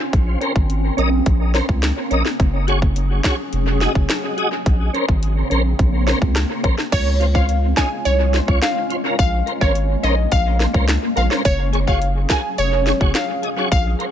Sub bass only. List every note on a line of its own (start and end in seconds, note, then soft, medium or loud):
0.13 0.36 A#1 loud
0.56 0.91 G#1 medium
0.98 1.21 A#1 medium
1.26 1.61 A#1 loud
1.69 1.92 C#2 loud
2.11 2.23 A#1 loud
2.40 3.20 F#1 loud
3.53 3.88 F1 loud
3.95 4.07 F#1 medium
4.66 4.89 A#1 loud
5.09 5.43 G#1 medium
5.51 5.74 A#1 medium
5.79 6.14 A#1 loud
6.22 6.45 C#2 medium
6.64 6.76 A#1 medium
6.93 7.73 C#2 loud
8.06 8.41 C2 medium
8.48 8.60 C#2 medium
9.19 9.42 A#1 loud
9.61 9.96 G#1 loud
10.03 10.27 A#1 medium
10.32 10.67 A#1 loud
10.74 10.98 C#2 loud
11.17 11.28 A#1 loud
11.45 12.26 F#1 loud
12.58 12.93 F1 loud
13.01 13.12 F#1 medium
13.72 13.95 A#1 loud